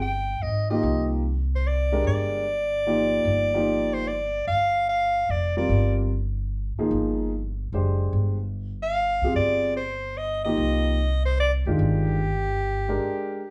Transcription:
Already playing: upright bass G1
0.02 soprano saxophone G5
0.42 upright bass G#1, soprano saxophone D#5
0.70 grand piano F3 A#3 D#4 G4, soprano saxophone D#5
0.83 upright bass C2
1.56 soprano saxophone C5
1.67 soprano saxophone D5
1.92 grand piano G#3 D4 G4 A#4
2.04 upright bass G1, soprano saxophone D5
2.87 grand piano F3 A#3 D#4 G4
3.25 upright bass G1
3.54 grand piano F3 A#3 D#4 G4
3.93 soprano saxophone C5
4.08 soprano saxophone D5
4.47 upright bass G1, soprano saxophone F5
4.89 soprano saxophone F5
5.29 upright bass F1, soprano saxophone D5
5.57 grand piano G3 C4 F4 A#4, soprano saxophone D5
5.69 upright bass G1
6.78 grand piano F3 A#3 D#4 G#4, muted upright bass stroke
6.91 upright bass G1
7.73 upright bass F#1, grand piano G#3 D4 G4 C5
8.13 upright bass G1
8.82 soprano saxophone F5
9.22 upright bass D2, grand piano C4 F4 G4 G#4
9.34 upright bass G1, soprano saxophone D5
9.77 soprano saxophone C5
10.17 soprano saxophone D#5
10.44 grand piano F3 A#3 D#4 G4, soprano saxophone D#5
10.57 upright bass C2
11.25 soprano saxophone C5
11.40 soprano saxophone D5
11.66 upright bass F#1, grand piano D#3 G#3 D4 F4, soprano saxophone G4
11.79 upright bass G1
12.88 grand piano G#3 D4 G4 A#4

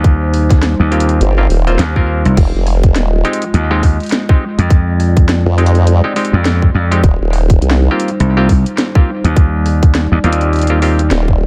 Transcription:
Already playing: slap bass D#2, analog synth pad G3 D#4 C5
0.04 kick, closed hi-hat
0.34 cross-stick, open hi-hat
0.39 cross-stick
0.43 cross-stick
0.50 kick, cross-stick, snare, closed hi-hat
0.53 cross-stick
0.59 cross-stick, snare, closed hi-hat
0.80 slap bass D#2
0.92 clav A#3 C4 F4 G4, closed hi-hat
1.00 closed hi-hat
1.09 closed hi-hat
1.21 wobble bass G1, closed hi-hat
1.38 clav A#3 C4 F4 G4, cross-stick
1.50 wobble bass D#1, open hi-hat
1.67 clav A#3 C4 F4 C5, closed hi-hat
1.79 slap bass D#2, snare, closed hi-hat
1.96 clav A#3 C4 F4 A#4, kick
2.25 slap bass C2, closed hi-hat
2.37 wobble bass F1, analog synth pad G#3 F4 D#5, kick, closed hi-hat, crash
2.55 wobble bass F1
2.67 cross-stick, open hi-hat
2.83 kick, closed hi-hat
2.96 wobble bass D#1, snare, closed hi-hat
3.25 clav G#3 C4 D#4 G4, closed hi-hat
3.33 closed hi-hat
3.42 closed hi-hat
3.54 slap bass D#2, closed hi-hat
3.71 clav G#3 C4 D#4 G4, cross-stick
3.83 kick, open hi-hat
4.00 closed hi-hat
4.03 closed hi-hat
4.06 closed hi-hat
4.09 snare, closed hi-hat
4.12 closed hi-hat
4.29 clav G#3 C4 D#4 G4, kick, cross-stick
4.58 slap bass F2, closed hi-hat
4.70 analog synth pad D5, kick, closed hi-hat
5.00 cross-stick, open hi-hat
5.17 kick, closed hi-hat
5.29 snare, closed hi-hat
5.46 wobble bass F2
5.58 clav G#3 C4 D#4 G4, closed hi-hat
5.66 closed hi-hat
5.75 closed hi-hat
5.87 closed hi-hat
6.04 clav G#3 C4 D#4 G4, cross-stick
6.16 clav G#3 C4 D#4 G4, open hi-hat
6.25 closed hi-hat
6.33 slap bass F2
6.45 snare, closed hi-hat
6.62 kick
6.74 slap bass F2
6.91 clav G#3 C4 D#4 G4, closed hi-hat
7.03 wobble bass D#1, analog synth pad G3 D#4 C5, kick, closed hi-hat
7.21 wobble bass D#1
7.33 cross-stick, open hi-hat
7.50 kick, closed hi-hat
7.62 wobble bass C2, closed hi-hat
7.71 snare
7.91 clav A#3 C4 F4 G4
8.00 closed hi-hat
8.08 closed hi-hat
8.20 slap bass C2, closed hi-hat
8.37 clav A#3 C4 F4 G4, cross-stick
8.49 kick, open hi-hat
8.66 closed hi-hat
8.78 snare, closed hi-hat
8.95 clav A#3 C4 F4 G4, kick, cross-stick
9.24 slap bass D#2, closed hi-hat
9.36 analog synth pad D5, kick, closed hi-hat
9.66 cross-stick, open hi-hat
9.83 kick, closed hi-hat
9.95 snare, closed hi-hat
10.12 slap bass D#2
10.24 slap bass D#2, clav A#3 C4 F4 G4, closed hi-hat
10.33 closed hi-hat
10.41 closed hi-hat
10.53 closed hi-hat
10.56 closed hi-hat
10.59 closed hi-hat
10.61 closed hi-hat
10.67 clav A#3 C4 F4 G4, cross-stick, closed hi-hat
10.82 clav A#3 C4 F4 G4, open hi-hat
10.99 closed hi-hat
11.11 wobble bass D#1, snare, closed hi-hat
11.28 kick

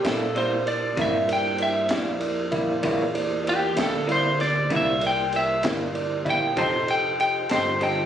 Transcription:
Already playing: tonewheel organ A#3 E4 G4 C5
0.03 upright bass A#2, clean electric guitar G3 A#3 E4, tine electric piano E4 A#4 D5, snare, ride
0.08 lead electric guitar A4
0.35 clean electric guitar C3 G3 A#3 E4, tine electric piano E4 A#4 D5, lead electric guitar C5, ride
0.66 tine electric piano E4 A#4 D5, lead electric guitar D5, ride
0.97 upright bass G2, clean electric guitar C3 G3 A#3 E4, tine electric piano E4 A#4 D5, kick, ride
1.02 lead electric guitar E5
1.28 tine electric piano E4 A#4 D5, ride
1.33 lead electric guitar G5
1.58 tine electric piano E4 A#4 D5, ride
1.62 lead electric guitar E5
1.89 upright bass F2, clean electric guitar A#3 E4, tine electric piano E4 D5, snare, ride
1.93 clean electric guitar G3
2.20 tine electric piano E4 A#4 D5, ride
2.51 clean electric guitar G3 A#3 E4, tine electric piano E4 A#4 D5, kick, ride
2.83 upright bass E2, clean electric guitar C3 G3 A#3 E4, tine electric piano E4 A#4 D5, tonewheel organ F4 G#4 B4 C#5, kick, ride
3.14 tonewheel organ A#3 E4 G4 C5, tine electric piano E4 A#4 D5, ride
3.44 tine electric piano E4 A#4 D5, ride
3.49 lead electric guitar G4
3.75 upright bass D2, clean electric guitar G3 A#3 E4, tine electric piano E4 A#4 D5, snare, ride
3.81 lead electric guitar A4
4.07 clean electric guitar C3 G3 A#3 E4, tine electric piano E4 A#4 D5, ride
4.12 lead electric guitar C5
4.38 tine electric piano E4 A#4 D5, lead electric guitar D5, snare, ride
4.70 upright bass C2, clean electric guitar C3 G3 A#3 E4, tine electric piano E4 A#4 D5, kick, ride
4.76 lead electric guitar E5
5.01 tine electric piano E4 A#4 D5, ride
5.07 lead electric guitar G5
5.32 tine electric piano E4 A#4 D5, lead electric guitar E5, ride
5.63 upright bass G1, clean electric guitar G3 A#3 E4, tine electric piano E4 A#4 D5, snare, ride
5.94 tine electric piano E4 A#4 D5, ride
6.25 clean electric guitar G3 A#3 E4, tine electric piano E4 A#4 D5, kick, ride
6.30 lead electric guitar G5
6.55 upright bass F1, clean electric guitar F3 C4 D#4 A4, tonewheel organ D#4 F4 A4 C5, tine electric piano G4 A4 D#5, lead electric guitar C5, kick, ride
6.87 tine electric piano G4 A4 D#5, lead electric guitar G5, ride
7.19 tine electric piano G4 A4 D#5, lead electric guitar G5, ride
7.49 upright bass G1, clean electric guitar C4 D#4 A4, tine electric piano G4 A4 D#5, lead electric guitar C5, snare, ride
7.80 clean electric guitar F3 C4 D#4 A4, tine electric piano G4 A4 D#5, lead electric guitar G5, ride

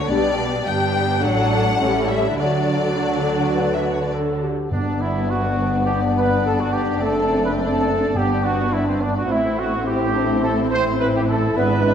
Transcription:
0.09 double bass section B1, cello section B2, french horn section G3 D4, viola section G3 B3, violin section D4 G4 D5
0.66 double bass section G1, cello section G2, viola section G3 B3, violin section D4 G4 G5
1.22 double bass section A1, cello section A2, french horn section F#3 D4, viola section F#3 D4, violin section D4 A4 F#5
1.80 double bass section A1, cello section A2, viola section G3 C#4, french horn section G3 C#4, violin section E4 A4
2.08 violin section E5
2.37 double bass section D2, cello section D3, viola section F#3 D4, french horn section F#3 D4, violin section F#4 A4 D5
2.96 clarinet F#4
3.54 french horn section F#3 D4, clarinet B4
3.75 violin section E5
3.84 violin section D5
3.93 violin section C#5
4.02 violin section D5
4.13 clarinet A4
4.43 clarinet G4
4.70 double bass section G1, timpani G2, cello section G2, viola section B3, clarinet B3, french horn section B3 D4, violin section D4 D5, trumpet section D4
5.00 trumpet section E4
5.29 trumpet section F#4
5.86 trumpet section G4
6.16 trumpet section B4
6.44 trumpet section A4
6.59 trumpet section F#4
6.72 trumpet section G4
7.00 double bass section F#1, cello section F#2, clarinet A3, viola section C4, french horn section C4, trumpet section A4
7.44 trumpet section B4
7.58 trumpet section A4
8.14 double bass section G1, timpani G2, cello section G2, clarinet B3, viola section B3, french horn section B3, trumpet section G4
8.43 trumpet section F#4
8.71 clarinet D4, trumpet section E4
8.86 trumpet section C4
9.00 trumpet section D4
9.15 trumpet section F#4
9.28 double bass section A1, cello section A2, clarinet C4, viola section C4, french horn section C4 E4, trumpet section E4, violin section E4 C5
9.58 trumpet section F#4
9.84 clarinet E4, trumpet section G4
10.13 clarinet D4
10.42 clarinet C4, trumpet section A4
10.70 trumpet section C5
10.99 trumpet section B4
11.14 trumpet section G4
11.28 trumpet section A4
11.55 double bass section G#1, cello section G#2, clarinet B3, french horn section D4, viola section D4, trumpet section B4, violin section E5
11.84 clarinet G#3

